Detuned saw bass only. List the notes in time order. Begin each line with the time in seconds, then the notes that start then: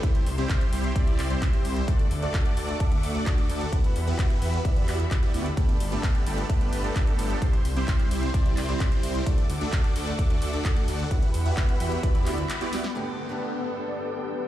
0.26 C2
0.73 C2
1.07 C2
1.19 C2
1.65 C2
2.11 D2
2.57 D2
2.92 D2
3.03 D2
3.49 D2
3.96 E2
4.42 E2
4.76 E2
4.88 E2
5.34 D2
5.80 G1
6.26 G1
6.61 G1
6.73 G1
7.19 G1
7.65 C2
8.11 C2
8.46 C2
8.57 C2
9.03 C2
9.49 D2
9.96 D2
10.30 D2
10.42 D2
10.88 D2
11.34 E2
11.80 E2
12.15 E2
12.26 D2